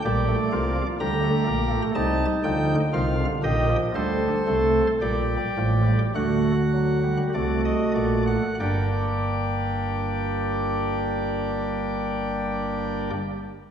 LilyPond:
<<
  \new Staff \with { instrumentName = "Pipe organ" } { \time 4/4 \key g \minor \tempo 4 = 52 << { d''4 bes''4 a''8 g''8 f''8 ees''8 | c''4 d''4 fis''4 d''16 ees''16 d''16 fis''16 | <g d' d''>1 | } \\ { g'8 f'8 g'4 ees'4 f'8 g'8 | a'4 g'4 fis'2 | g'1 | } >> }
  \new Staff \with { instrumentName = "Pipe organ" } { \clef bass \time 4/4 \key g \minor << { g16 a16 bes16 f16 g16 a16 bes16 a16 g8 f8 ees16 d16 ees16 f16 | g8 a8 g8 f16 g16 a8 fis16 g16 a4 | bes1 | } \\ { <bes,, bes,>8 <c, c>8 <d, d>8 <bes,, bes,>8 <c, c>8 <d, d>8 <c, c>8 <bes,, bes,>8 | <d, d>8 <c, c>8 <bes,, bes,>8 <a,, a,>8 <d, d>4 <c, c>8 <bes,, bes,>8 | <g,, g,>1 | } >> }
>>